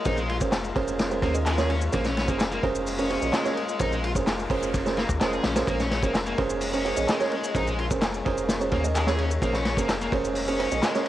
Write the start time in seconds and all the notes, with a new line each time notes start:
Already playing: G#3 A#3 F4
0.05 A#1 C#4 D#4 G#4 A#4 C5, kick, ride, shaker
0.17 G#3, shaker
0.29 F4, ride
0.40 F1 C#4 G#4 A#4 C5, kick, shaker
0.52 snare, clap, ride, shaker
0.64 shaker
0.76 F1 C#4 G#4 A#4 C5, kick, ride
0.88 shaker
0.99 snare, ride, shaker
1.11 C#4 G#4 A#4 C5, shaker
1.22 D#2 A#3 C#4 G#4 A#4 C5, kick, ride
1.34 C#4 G#4 A#4 D#5, shaker
1.46 G#3, clap, ride, shaker
1.58 C#4 G#4 A#4 C#5, snare, shaker
1.69 C#4, ride
1.81 shaker
1.92 A#1 A#3 C#4 G#4 A#4 C5, kick, ride, shaker
2.04 C#4, snare, shaker
2.17 snare, ride
2.28 F1 A#3 C#4 G#4 A#4 C5, kick, shaker
2.40 snare, clap, ride, shaker
2.51 A#3, shaker
2.63 F1 C#4 G#4 A#4 C5, kick, ride
2.75 shaker
2.87 open hi-hat, shaker
2.99 C#4 G#4 A#4 C5, shaker
3.10 C#4 G#4 A#4 C5, ride
3.22 A#1 C#4 G#4 A#4 D#5, shaker
3.33 G#3, snare, clap, ride, shaker
3.45 C#4 G#4 A#4 C#5, snare, shaker
3.57 ride
3.69 shaker
3.79 A#1 C#4 D#4 G#4 A#4 C5, kick, ride, noise sweep, shaker
3.92 G#3, shaker
4.04 F4, ride
4.15 F1 C#4 G#4 A#4 C5, kick, shaker
4.27 snare, clap, ride, shaker
4.39 shaker
4.50 F1 C#4 G#4 A#4 C5, kick, ride
4.63 shaker
4.74 kick, ride, shaker
4.86 C#4 G#4 A#4 C5, snare, shaker
4.97 A#3, snare, ride
5.09 D#2, kick, shaker
5.21 F1 G#3 C#4 G#4 A#4 C5, snare, clap, ride, shaker
5.33 G#4, shaker
5.44 A#1 C#4, snare, ride
5.56 C#4 G#4 A#4 C5, snare, ride, shaker
5.67 A#1 A#3 C#4 G#4 A#4 C5, kick, ride, shaker
5.80 C#4, snare, shaker
5.91 snare, ride
6.03 F1 A#3 C#4 G#4 A#4 C5, kick, shaker
6.15 snare, clap, ride, shaker
6.26 A#3, shaker
6.38 F1 C#4 G#4 A#4 C5, kick, ride
6.50 shaker
6.61 open hi-hat, shaker
6.73 C#4 G#4 A#4 C5, shaker
6.85 C#4 G#4 A#4 C5, ride
6.97 A#1 C#4 G#4 A#4 D#5, shaker
7.08 G#3, snare, clap, ride, shaker
7.20 C#4 G#4 A#4 C#5, snare, shaker
7.31 ride
7.44 shaker
7.55 A#1 C#4 D#4 G#4 A#4 C5, kick, ride, shaker
7.67 G#3, shaker
7.78 F4, ride
7.91 F1 C#4 G#4 A#4 C5, kick, shaker
8.01 snare, clap, ride, shaker
8.14 shaker
8.25 F1 C#4 G#4 A#4 C5, kick, ride
8.37 shaker
8.49 snare, ride, shaker
8.61 C#4 G#4 A#4 C5, shaker
8.71 D#2 A#3 C#4 G#4 A#4 C5, kick, ride
8.84 C#4 G#4 A#4 D#5, shaker
8.95 G#3, clap, ride, shaker
9.07 C#4 G#4 A#4 C#5, snare, shaker
9.18 C#4, ride
9.31 shaker
9.42 A#1 A#3 C#4 G#4 A#4 C5, kick, ride, shaker
9.53 C#4, snare, shaker
9.65 snare, ride
9.77 F1 A#3 C#4 G#4 A#4 C5, kick, shaker
9.89 snare, clap, ride, shaker
10.01 A#3, shaker
10.12 F1 C#4 G#4 A#4 C5, kick, ride
10.25 shaker
10.35 open hi-hat, shaker
10.48 C#4 G#4 A#4 C5, shaker
10.60 C#4 G#4 A#4 C5, ride
10.71 A#1 C#4 G#4 A#4 D#5, shaker
10.83 G#3, snare, clap, ride, shaker
10.95 C#4 G#4 A#4 C#5, snare, shaker